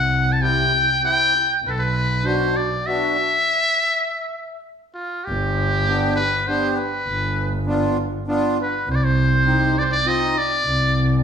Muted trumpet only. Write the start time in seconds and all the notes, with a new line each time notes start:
Already playing: F#5
0.32 A5
0.42 G5
1.05 G5
1.67 A4 B4
1.79 B4
2.26 C5
2.57 D5
2.87 E5
4.94 F4
5.25 G4
6.16 B4
6.47 C5
6.70 C5
6.76 B4
8.62 B4
8.91 C5
8.95 D5
9.04 C5
9.79 C5 D5
9.91 D5
10.08 D#5
10.38 D5